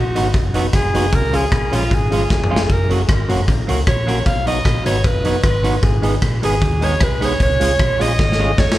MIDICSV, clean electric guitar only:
0, 0, Header, 1, 3, 480
1, 0, Start_track
1, 0, Tempo, 392157
1, 1381, Time_signature, 4, 2, 24, 8
1, 10752, End_track
2, 0, Start_track
2, 0, Title_t, "Clean electric guitar"
2, 0, Program_c, 0, 27
2, 185, Note_on_c, 0, 54, 92
2, 190, Note_on_c, 0, 59, 92
2, 202, Note_on_c, 0, 63, 90
2, 206, Note_on_c, 0, 66, 85
2, 317, Note_off_c, 0, 54, 0
2, 320, Note_off_c, 0, 59, 0
2, 326, Note_off_c, 0, 63, 0
2, 328, Note_off_c, 0, 66, 0
2, 662, Note_on_c, 0, 54, 95
2, 674, Note_on_c, 0, 59, 98
2, 678, Note_on_c, 0, 63, 89
2, 680, Note_on_c, 0, 66, 103
2, 795, Note_off_c, 0, 54, 0
2, 801, Note_off_c, 0, 59, 0
2, 803, Note_off_c, 0, 63, 0
2, 804, Note_off_c, 0, 66, 0
2, 1151, Note_on_c, 0, 54, 91
2, 1161, Note_on_c, 0, 59, 92
2, 1166, Note_on_c, 0, 63, 101
2, 1173, Note_on_c, 0, 66, 93
2, 1279, Note_off_c, 0, 54, 0
2, 1284, Note_off_c, 0, 59, 0
2, 1287, Note_off_c, 0, 63, 0
2, 1290, Note_off_c, 0, 66, 0
2, 1613, Note_on_c, 0, 53, 87
2, 1626, Note_on_c, 0, 56, 75
2, 1632, Note_on_c, 0, 61, 86
2, 1636, Note_on_c, 0, 65, 99
2, 1750, Note_off_c, 0, 53, 0
2, 1757, Note_off_c, 0, 56, 0
2, 1759, Note_off_c, 0, 61, 0
2, 1761, Note_off_c, 0, 65, 0
2, 2094, Note_on_c, 0, 53, 78
2, 2104, Note_on_c, 0, 56, 89
2, 2113, Note_on_c, 0, 61, 94
2, 2116, Note_on_c, 0, 65, 97
2, 2230, Note_off_c, 0, 53, 0
2, 2235, Note_off_c, 0, 56, 0
2, 2239, Note_off_c, 0, 61, 0
2, 2241, Note_off_c, 0, 65, 0
2, 2583, Note_on_c, 0, 53, 84
2, 2595, Note_on_c, 0, 56, 91
2, 2601, Note_on_c, 0, 61, 90
2, 2611, Note_on_c, 0, 65, 99
2, 2715, Note_off_c, 0, 53, 0
2, 2720, Note_off_c, 0, 56, 0
2, 2724, Note_off_c, 0, 61, 0
2, 2728, Note_off_c, 0, 65, 0
2, 3058, Note_on_c, 0, 53, 88
2, 3064, Note_on_c, 0, 56, 93
2, 3071, Note_on_c, 0, 61, 88
2, 3074, Note_on_c, 0, 65, 105
2, 3191, Note_off_c, 0, 53, 0
2, 3195, Note_off_c, 0, 56, 0
2, 3198, Note_off_c, 0, 61, 0
2, 3199, Note_off_c, 0, 65, 0
2, 3544, Note_on_c, 0, 54, 92
2, 3552, Note_on_c, 0, 58, 80
2, 3560, Note_on_c, 0, 61, 81
2, 3566, Note_on_c, 0, 66, 96
2, 3674, Note_off_c, 0, 54, 0
2, 3679, Note_off_c, 0, 58, 0
2, 3683, Note_off_c, 0, 61, 0
2, 3685, Note_off_c, 0, 66, 0
2, 4024, Note_on_c, 0, 54, 84
2, 4031, Note_on_c, 0, 58, 92
2, 4042, Note_on_c, 0, 61, 84
2, 4048, Note_on_c, 0, 66, 81
2, 4154, Note_off_c, 0, 54, 0
2, 4158, Note_off_c, 0, 58, 0
2, 4163, Note_off_c, 0, 61, 0
2, 4166, Note_off_c, 0, 66, 0
2, 4494, Note_on_c, 0, 54, 77
2, 4506, Note_on_c, 0, 58, 90
2, 4515, Note_on_c, 0, 61, 83
2, 4522, Note_on_c, 0, 66, 95
2, 4629, Note_off_c, 0, 54, 0
2, 4636, Note_off_c, 0, 58, 0
2, 4640, Note_off_c, 0, 61, 0
2, 4643, Note_off_c, 0, 66, 0
2, 4977, Note_on_c, 0, 54, 88
2, 4983, Note_on_c, 0, 58, 100
2, 4994, Note_on_c, 0, 61, 96
2, 4996, Note_on_c, 0, 66, 102
2, 5111, Note_off_c, 0, 54, 0
2, 5114, Note_off_c, 0, 58, 0
2, 5119, Note_off_c, 0, 61, 0
2, 5120, Note_off_c, 0, 66, 0
2, 5456, Note_on_c, 0, 54, 84
2, 5460, Note_on_c, 0, 59, 86
2, 5468, Note_on_c, 0, 63, 84
2, 5476, Note_on_c, 0, 66, 93
2, 5590, Note_off_c, 0, 54, 0
2, 5592, Note_off_c, 0, 59, 0
2, 5596, Note_off_c, 0, 63, 0
2, 5600, Note_off_c, 0, 66, 0
2, 5934, Note_on_c, 0, 54, 78
2, 5949, Note_on_c, 0, 59, 89
2, 5953, Note_on_c, 0, 63, 104
2, 5960, Note_on_c, 0, 66, 100
2, 6069, Note_off_c, 0, 54, 0
2, 6077, Note_off_c, 0, 59, 0
2, 6079, Note_off_c, 0, 63, 0
2, 6082, Note_off_c, 0, 66, 0
2, 6422, Note_on_c, 0, 54, 93
2, 6431, Note_on_c, 0, 59, 102
2, 6434, Note_on_c, 0, 63, 102
2, 6440, Note_on_c, 0, 66, 96
2, 6554, Note_off_c, 0, 54, 0
2, 6558, Note_off_c, 0, 59, 0
2, 6560, Note_off_c, 0, 63, 0
2, 6562, Note_off_c, 0, 66, 0
2, 6893, Note_on_c, 0, 54, 93
2, 6896, Note_on_c, 0, 59, 95
2, 6907, Note_on_c, 0, 63, 108
2, 6908, Note_on_c, 0, 66, 94
2, 7029, Note_off_c, 0, 54, 0
2, 7031, Note_off_c, 0, 59, 0
2, 7036, Note_off_c, 0, 63, 0
2, 7037, Note_off_c, 0, 66, 0
2, 7369, Note_on_c, 0, 56, 78
2, 7377, Note_on_c, 0, 59, 82
2, 7382, Note_on_c, 0, 63, 84
2, 7392, Note_on_c, 0, 68, 98
2, 7508, Note_off_c, 0, 56, 0
2, 7512, Note_off_c, 0, 59, 0
2, 7514, Note_off_c, 0, 63, 0
2, 7519, Note_off_c, 0, 68, 0
2, 7859, Note_on_c, 0, 56, 80
2, 7867, Note_on_c, 0, 59, 77
2, 7872, Note_on_c, 0, 63, 88
2, 7880, Note_on_c, 0, 68, 81
2, 7992, Note_off_c, 0, 56, 0
2, 7997, Note_off_c, 0, 59, 0
2, 7999, Note_off_c, 0, 63, 0
2, 8003, Note_off_c, 0, 68, 0
2, 8341, Note_on_c, 0, 56, 92
2, 8358, Note_on_c, 0, 59, 87
2, 8363, Note_on_c, 0, 63, 102
2, 8367, Note_on_c, 0, 68, 103
2, 8474, Note_off_c, 0, 56, 0
2, 8482, Note_off_c, 0, 59, 0
2, 8485, Note_off_c, 0, 63, 0
2, 8487, Note_off_c, 0, 68, 0
2, 8820, Note_on_c, 0, 56, 91
2, 8828, Note_on_c, 0, 59, 96
2, 8838, Note_on_c, 0, 63, 100
2, 8842, Note_on_c, 0, 68, 103
2, 8954, Note_off_c, 0, 56, 0
2, 8958, Note_off_c, 0, 59, 0
2, 8963, Note_off_c, 0, 63, 0
2, 8965, Note_off_c, 0, 68, 0
2, 9307, Note_on_c, 0, 56, 108
2, 9314, Note_on_c, 0, 61, 95
2, 9321, Note_on_c, 0, 65, 103
2, 9330, Note_on_c, 0, 68, 100
2, 9438, Note_off_c, 0, 56, 0
2, 9441, Note_off_c, 0, 61, 0
2, 9445, Note_off_c, 0, 65, 0
2, 9449, Note_off_c, 0, 68, 0
2, 9786, Note_on_c, 0, 56, 75
2, 9793, Note_on_c, 0, 61, 86
2, 9805, Note_on_c, 0, 65, 96
2, 9807, Note_on_c, 0, 68, 100
2, 9918, Note_off_c, 0, 56, 0
2, 9921, Note_off_c, 0, 61, 0
2, 9927, Note_off_c, 0, 65, 0
2, 9928, Note_off_c, 0, 68, 0
2, 10266, Note_on_c, 0, 56, 86
2, 10274, Note_on_c, 0, 61, 85
2, 10280, Note_on_c, 0, 65, 89
2, 10289, Note_on_c, 0, 68, 108
2, 10398, Note_off_c, 0, 56, 0
2, 10402, Note_off_c, 0, 61, 0
2, 10405, Note_off_c, 0, 65, 0
2, 10410, Note_off_c, 0, 68, 0
2, 10752, End_track
3, 0, Start_track
3, 0, Title_t, "Muted clean electric guitar strokes"
3, 407, Note_on_c, 9, 29, 37
3, 530, Note_off_c, 9, 29, 0
3, 2327, Note_on_c, 9, 29, 39
3, 2450, Note_off_c, 9, 29, 0
3, 4262, Note_on_c, 9, 29, 40
3, 4384, Note_off_c, 9, 29, 0
3, 6176, Note_on_c, 9, 29, 53
3, 6299, Note_off_c, 9, 29, 0
3, 8089, Note_on_c, 9, 29, 40
3, 8212, Note_off_c, 9, 29, 0
3, 10013, Note_on_c, 9, 29, 47
3, 10135, Note_off_c, 9, 29, 0
3, 10752, End_track
0, 0, End_of_file